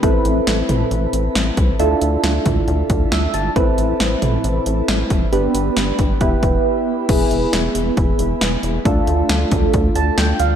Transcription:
<<
  \new Staff \with { instrumentName = "Synth keys" } { \time 4/4 \key a \minor \tempo 4 = 136 << { r1 | r2. e''8 a''8 | r1 | r1 |
r1 | r2 r8 a''8 g''8 f''8 | } \\ { <c' e' a' b'>1 | <d' e' f' a'>1 | <c' e' a' b'>1 | <b d' g' b'>2 <b e' g' b'>2 |
<b e' gis' b'>1 | <a d' f' a'>1 | } >> }
  \new Staff \with { instrumentName = "Analog synth bass" } { \clef bass \time 4/4 \key a \minor a,,8 a,,8 a,,8 a,,8 a,,8 a,,8 a,,8 c,8 | d,8 d,8 d,8 d,8 d,8 d,8 d,8 g,,8 | a,,8 a,,8 a,,8 a,,8 a,,8 a,,8 a,,8 f,,8 | g,,8 g,,8 g,,8 g,,8 e,,8 e,,8 r4 |
e,,8 e,,8 e,,8 e,,8 e,,8 e,,8 e,,8 e,,8 | d,8 d,8 d,8 d,8 d,8 d,8 d,8 d,8 | }
  \new DrumStaff \with { instrumentName = "Drums" } \drummode { \time 4/4 <hh bd>8 hh8 <hh sn>8 <hh toml>8 hh8 hh8 <hh sn>8 <hh bd>8 | hh8 hh8 <hh sn>8 <hh bd toml>8 hh8 <hh bd>8 <hh sn>8 hh8 | <hh bd>8 hh8 <hh sn>8 <hh toml>8 hh8 hh8 <hh sn>8 <hh bd>8 | hh8 hh8 <hh sn>8 <hh bd>8 <hh bd>8 <hh bd>8 r4 |
<cymc hh bd>8 hh8 <hh sn>8 hh8 <hh bd>8 hh8 <hh sn>8 hh8 | <hh bd>8 hh8 <hh sn>8 <hh bd>8 <hh bd>8 hh8 <hh sn>8 hh8 | }
>>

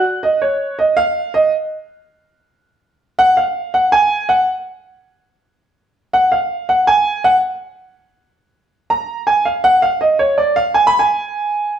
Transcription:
\new Staff \with { instrumentName = "Grand piano" } { \time 4/4 \key aes \dorian \tempo 4 = 163 r8 ees''8 des''4 ees''8 f''4 ees''8 | r1 | r8 ges''8 f''4 ges''8 aes''4 ges''8 | r1 |
r8 ges''8 f''4 ges''8 aes''4 ges''8 | r1 | bes''4 aes''8 f''8 ges''8 f''8 ees''8 des''8 | d''8 f''8 \tuplet 3/2 { aes''8 ces'''8 aes''8~ } aes''4.~ aes''16 r16 | }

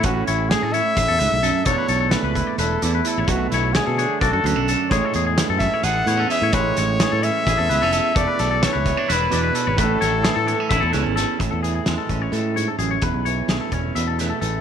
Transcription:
<<
  \new Staff \with { instrumentName = "Trumpet" } { \time 7/8 \key a \major \tempo 4 = 129 fis'8 e'8 gis'8 e''2 | cis''4 b'4 a'4 e'8 | fis'8 e'8 gis'4 a'4 r8 | cis''4 r8 e''8 fis''4 e''8 |
cis''4. e''2 | d''4 cis''4 b'4. | a'2. r8 | r2. r8 |
r2. r8 | }
  \new Staff \with { instrumentName = "Clean electric guitar" } { \time 7/8 \key a \major b'8 cis''8 gis'16 a'16 cis''8 e''16 a'16 b'16 a'16 a'8 | a'16 b'16 a'16 a'8 b'8 d''16 b'8 d''16 b'16 a'16 cis''16 | b'8 cis''8 gis'16 a'16 cis''8 d''16 a'16 b'16 a'16 a'8 | gis'16 a'16 gis'16 gis'8 a'8 cis''16 a'8 cis''16 a'16 gis'16 cis''16 |
b'8 cis''8 gis'16 a'16 cis''8 e''16 a'16 b'16 a'16 a'8 | a'16 b'16 a'16 a'8 b'8 d''16 b'8 d''16 b'16 a'16 cis''16 | b'8 cis''8 gis'16 a'16 cis''8 e''16 a'16 b'16 a'16 a'8 | gis'16 a'16 gis'16 gis'8 a'8 cis''16 a'8 cis''16 a'16 gis'16 cis''16 |
b'8 cis''8 gis'16 a'16 cis''8 e''16 a'16 b'16 a'16 a'8 | }
  \new Staff \with { instrumentName = "Clean electric guitar" } { \time 7/8 \key a \major << { cis'4. e'2 | d'4. e'8 e'8 e'4 | a4. d'8 fis'8 b16 d'8. | gis4. cis'8 gis'8 b16 cis'8. |
gis4. cis'8 gis'8 b16 cis'8. | a4. b16 d'16 e'8 d'4 | a4. b16 cis'16 e'8 cis'4 | r4 gis8 cis'2 |
r4 a8 cis'4 a4 | } \\ { a,4 a4 a,8 gis,8 fis,8 | e,4 a4. e,4 | b,4 d4. fis,4 | a,4 e4. e,4 |
a,4 e4. e,4 | e,4 e4. b,4 | a,4 e4. e,4 | a,8 e4. a,8 gis,8 fis,8 |
e,8 e4. b,4 e8 | } >> }
  \new Staff \with { instrumentName = "Fingered electric bass" } { \clef bass \time 7/8 \key a \major a,,8 a,,8. a,8 r16 a,,16 e,16 cis,16 b,,8 r16 | e,,16 r16 b,,8. cis,8 r16 e,,8 e,8 r16 a,,16 | b,,8 b,,8. b,8 r16 b,,16 fis,16 d,16 b,,8 r16 | a,,16 r16 e,8. fis,8 r16 a,,8 a,8 r16 a,16 |
a,,8 a,,8. a,8 r16 a,,16 e,16 cis,16 f,,8 r16 | e,,16 r16 b,,8. cis,8 r16 e,,8 e,8 r16 gis,,16 | a,,8 a,,8. a,8 r16 a,,16 e,16 cis,16 gis,,8 r16 | a,,16 e,8. e,16 r16 a,,8 a,4 a,,8 |
e,,16 b,,8. b,,16 r16 e,,8 e,4 a,,8 | }
  \new DrumStaff \with { instrumentName = "Drums" } \drummode { \time 7/8 <hh bd>8 hh8 <hh sn>8 hh8 <hh bd>8 hh8 hh8 | <hh bd>8 hh8 <hh sn>8 <hh bd>8 hh8 hh8 hh8 | <hh bd>8 <hh sn>8 <hh sn>8 hh8 <hh bd>8 hh8 hh8 | <hh bd>8 hh8 <hh sn>8 <hh bd sn>8 hh8 hh8 hh8 |
<hh bd>8 <hh sn>8 <hh sn>8 hh8 <hh bd>8 hh8 hh8 | <hh bd>8 <hh sn>8 <hh sn>8 <hh bd>8 <hh sn>8 hh8 hh8 | <hh bd>8 <hh sn>8 <hh sn>8 hh8 <hh bd>8 <hh sn>8 <hh sn>8 | <hh bd>8 hh8 <hh sn>8 <hh bd>8 hh8 hh8 hh8 |
<hh bd>8 hh8 <hh sn>8 <hh bd>8 hh8 <hh sn>8 hh8 | }
>>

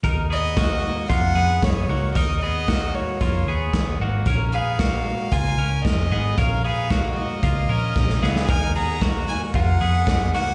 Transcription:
<<
  \new Staff \with { instrumentName = "Violin" } { \time 4/4 \key ees \minor \tempo 4 = 114 r8 ees''4. ges''4 des''4 | ees''8 ees''4 des''2 r8 | r8 f''4. aes''4 ees''4 | f''8 f''4 ees''2 f''8 |
aes''8 bes''4 aes''8 ges''4. ges''8 | }
  \new Staff \with { instrumentName = "Clean electric guitar" } { \time 4/4 \key ees \minor <ees' bes'>8 <ces' aes'>8 <bes ges'>4 <bes f'>8 <ces' aes'>4 <bes ges'>8 | <ees' bes'>8 <ces' aes'>8 <bes ges'>4 <bes f'>8 <ces' aes'>4 <bes ges'>8 | <des' bes'>8 <ces' aes'>8 <bes ges'>4 <bes f'>8 <des' bes'>4 <ces' aes'>8 | <des' bes'>8 <ces' aes'>8 <bes ges'>4 <bes f'>8 <des' bes'>4 <ces' aes'>8 |
<ees' bes'>8 <ces' aes'>8 <bes ges'>4 <bes f'>8 <ces' aes'>4 <bes ges'>8 | }
  \new Staff \with { instrumentName = "Picked electric bass" } { \clef bass \time 4/4 \key ees \minor ees,2 f,8 f,8 ges,8 des,8 | ees,2 f,8 ees,8 ees,8 aes,,8 | bes,,2 des,8 des,8 f,8 aes,,8 | bes,,2 des,8 bes,,8 bes,,8 des,8 |
ees,2 f,8 f,8 ges,8 des,8 | }
  \new DrumStaff \with { instrumentName = "Drums" } \drummode { \time 4/4 <hh bd>4 <hh bd sn>4 <hh bd>4 <hh bd sn>4 | <hh bd>4 <hh bd sn>4 <hh bd>4 <hh bd sn>4 | <hh bd>4 <hh bd sn>4 <hh bd>4 <hh bd sn>4 | <hh bd>4 <hh bd sn>4 <hh bd>4 <bd sn>16 sn16 sn16 sn16 |
<hh bd>8 hho8 <hh bd sn>8 hho8 <hh bd>8 hho8 <hh bd sn>8 hho8 | }
>>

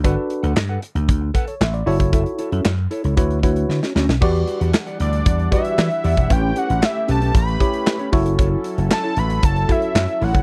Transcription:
<<
  \new Staff \with { instrumentName = "Analog synth lead" } { \time 4/4 \key e \dorian \tempo 4 = 115 r1 | r1 | r4. d''4 e''4. | g''8 fis''8 e''8 a''8 b''4. r8 |
r4 a''8 b''8 a''8 e''4 fis''8 | }
  \new Staff \with { instrumentName = "Clean electric guitar" } { \time 4/4 \key e \dorian <a' b' fis''>16 r8 <a' b' fis''>16 r16 <a' b' fis''>16 r4 <a' b' fis''>16 r8. <e' a' cis''>16 <e' a' cis''>16 | <e' a' e''>16 r16 <e' a' cis''>16 <e' a' e''>16 r8 <e' a' cis''>16 <e' a' cis''>16 r4 r16 <cis' fis' cis''>16 <cis' fis' cis''>16 r16 | <g' d'' fis''>16 r8 <g' d'' fis''>16 r16 <g' d'' fis''>16 r4 <g' d'' fis''>16 r8. <g' d'' fis''>16 <g' d'' fis''>16 | <cis' g' cis''>16 r16 <cis' g' b'>16 <cis' g' cis''>16 r8 <cis' g' b'>16 <cis' b'>16 r4 r16 <cis' g' cis''>16 <e' a' e''>16 r16 |
<e' a' cis''>16 r8 <e' a' cis''>16 r16 <e' a' cis''>16 r4 <e' a' cis''>16 r8. <e' a' cis''>16 <e' a' cis''>16 | }
  \new Staff \with { instrumentName = "Tine electric piano" } { \time 4/4 \key e \dorian << { r2 r8. cis''16 e''16 d''8 r16 | r1 | r1 | r1 |
r1 | } \\ { <d' fis' a' b'>4 r2 r8 <e' fis' a' cis''>8~ | <e' fis' a' cis''>4 r4 <e' fis' b' cis''>8 <e' fis' b' cis''>8 r4 | <fis' g' b' d''>4 r4. <fis' g' b' d''>8 r4 | <e' g' b' cis''>4 r4. <e' g' b' cis''>8 r8 <e' fis' a' cis''>8~ |
<e' fis' a' cis''>4 r4. <e' fis' a' cis''>8 r4 | } >> }
  \new Staff \with { instrumentName = "Analog synth pad" } { \time 4/4 \key e \dorian r1 | r1 | <e g d' fis''>1 | <a cis' g'>2.~ <a cis' g'>8 <fis e' a'>8~ |
<fis e' a'>1 | }
  \new Staff \with { instrumentName = "Slap bass" } { \clef bass \time 4/4 \key e \dorian g,,16 r8 d,16 g,8 r16 d,16 d,8 r8 a,,8 fis,,8 | fis,,16 r8 fis,16 fis,8 r16 cis,16 d,8 d,8 d16 r16 d,16 b,,16 | e,8 r16 e,16 r8 d,8 e,8 r8 e16 r16 e,16 e,,16 | a,,8 r16 a,,16 r8 b,,8 a,,8 r4 fis,,8~ |
fis,,8 r16 fis,,16 r8 a,,8 fis,,8 r8 fis,16 r16 a,,16 fis,,16 | }
  \new DrumStaff \with { instrumentName = "Drums" } \drummode { \time 4/4 <hh bd>8 hh16 hh16 <hc sn>8 hh16 hh16 <hh bd>8 <hh bd>16 hh16 <hc sn>16 hh16 hho16 <hh bd>16 | <hh bd>16 hh16 hh16 hh16 <hc sn>8 hh16 hh16 <hh bd>16 hh16 <hh bd>16 hh16 sn16 sn16 sn16 sn16 | <cymc bd>16 hh16 hh16 hh16 <hc sn>16 hh16 hh16 hh16 <hh bd>16 hh16 <hh bd>16 hh16 <hc sn>16 hh16 hho16 <hh bd>16 | <hh bd>8 hh16 hh16 <hc sn>8 hh16 hh16 <hh bd>16 hh16 <hh bd>16 hh16 <hc sn>16 hh16 <hho bd>16 hh16 |
<hh bd>8 hh16 hh16 <hc sn>8 hh16 hh16 <hh bd>16 hh16 <hh bd>16 hh16 <hc sn>16 hh16 hho16 <hh bd>16 | }
>>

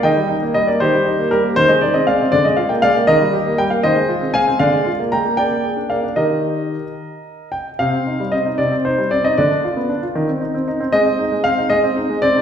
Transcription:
<<
  \new Staff \with { instrumentName = "Grand piano" } { \time 6/8 \key ees \major \tempo 4. = 78 <ees'' g''>4 ees''16 d''16 <g' c''>4 <g' bes'>8 | c''16 ees''16 d''16 ees''16 <d'' f''>8 d''16 ees''16 f''16 g''16 <d'' f''>8 | <bes' ees''>4 g''16 f''16 <c'' ees''>4 <f'' aes''>8 | <d'' f''>4 <g'' bes''>8 <d'' g''>4 <d'' f''>8 |
<bes' ees''>2~ <bes' ees''>8 g''8 | \key c \minor f''4 ees''8 d''8 c''8 d''16 ees''16 | d''2 r4 | ees''4 f''8 ees''4 d''8 | }
  \new Staff \with { instrumentName = "Grand piano" } { \time 6/8 \key ees \major ees16 g16 ees'16 bes16 g16 bes16 ees16 g16 ees'16 bes16 g16 bes16 | ees16 aes16 ees'16 c'16 aes16 c'16 d16 aes16 f'16 bes16 aes16 bes16 | ees16 g16 g'16 bes16 g16 bes16 ees16 aes16 f'16 c'16 aes16 c'16 | d16 aes16 f'16 bes16 aes16 bes16 bes16 bes16 aes'16 d'16 bes16 d'16 |
<ees ees' g'>4. r4. | \key c \minor c16 c'16 ees'16 g16 c'16 ees'16 c16 c'16 ees'16 g16 c'16 ees'16 | d16 d'16 f'16 b16 d'16 f'16 ees16 c'16 ees'16 c'16 ees'16 c'16 | aes16 c'16 ees'16 aes16 c'16 ees'16 aes16 c'16 ees'16 aes16 c'16 ees'16 | }
>>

